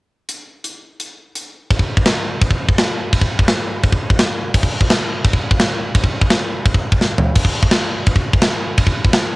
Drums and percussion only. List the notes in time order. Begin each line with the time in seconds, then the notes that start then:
0.29 closed hi-hat
0.64 closed hi-hat
1.00 closed hi-hat
1.35 closed hi-hat
1.70 kick, china
1.79 kick
1.97 kick
2.06 snare, china
2.41 kick, china
2.51 kick
2.69 kick
2.78 snare, china
3.13 kick, china
3.22 kick
3.39 kick
3.48 snare, china
3.83 kick, china
3.92 kick
4.10 kick
4.19 snare, china
4.54 kick, crash, china
4.63 kick
4.81 kick
4.90 snare, china
5.25 kick, china
5.33 kick
5.51 kick
5.59 snare, china
5.95 kick, china
6.04 kick
6.21 kick
6.30 snare, china
6.66 kick, china
6.74 kick
6.92 kick
7.01 snare
7.18 floor tom
7.35 kick, crash, china
7.45 kick
7.63 kick
7.71 snare, china
8.06 kick, china
8.16 kick
8.33 kick
8.42 snare, china
8.77 kick, china
8.87 kick
9.05 kick
9.13 snare, china